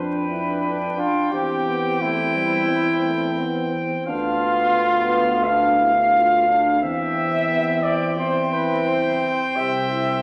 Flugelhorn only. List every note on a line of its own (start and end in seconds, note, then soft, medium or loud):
0.00 0.97 B4 loud
0.98 1.33 F4 medium
1.32 2.03 G4 loud
2.02 3.73 E4 loud
4.07 5.46 F4 loud
5.45 6.81 F5 loud
6.82 7.84 E5 loud
7.83 8.18 D5 loud
8.18 8.55 C5 medium
8.53 8.87 B4 medium
8.88 9.57 C5 loud
9.56 10.22 E5 loud